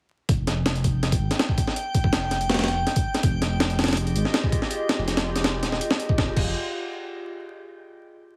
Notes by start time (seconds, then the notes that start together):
0.29 F1 G5 G6, kick, closed hi-hat
0.47 snare, closed hi-hat
0.66 snare, closed hi-hat
0.75 closed hi-hat
0.84 kick, closed hi-hat
1.03 snare, closed hi-hat
1.12 kick, closed hi-hat
1.21 G#1
1.31 snare, closed hi-hat
1.39 snare, closed hi-hat
1.49 kick
1.58 kick, closed hi-hat
1.67 snare
1.76 closed hi-hat
1.95 kick, closed hi-hat
2.04 F1, kick
2.13 snare, closed hi-hat
2.31 snare, closed hi-hat
2.41 closed hi-hat
2.49 snare, closed hi-hat
2.54 snare, closed hi-hat
2.59 snare, closed hi-hat
2.64 snare, closed hi-hat
2.68 snare, closed hi-hat
2.87 snare, closed hi-hat
2.96 kick, closed hi-hat
3.14 snare, closed hi-hat
3.23 F1 F4 G4 G#4 D#5, kick, closed hi-hat
3.42 snare, closed hi-hat
3.60 snare, closed hi-hat
3.70 closed hi-hat
3.79 snare, closed hi-hat
3.84 snare, closed hi-hat
3.88 snare, closed hi-hat
3.93 snare, closed hi-hat
3.97 closed hi-hat
4.07 closed hi-hat
4.16 G#1, closed hi-hat
4.25 snare
4.34 snare, closed hi-hat
4.44 kick
4.52 kick, closed hi-hat
4.62 snare
4.71 closed hi-hat
4.89 snare, closed hi-hat
4.99 F1
5.08 snare, closed hi-hat
5.17 snare, closed hi-hat
5.36 snare, closed hi-hat
5.44 snare, closed hi-hat
5.63 D#1, snare, closed hi-hat
5.72 snare
5.81 closed hi-hat
5.91 snare
6.00 closed hi-hat
6.09 kick
6.18 F1, kick, snare
6.36 F1, kick, crash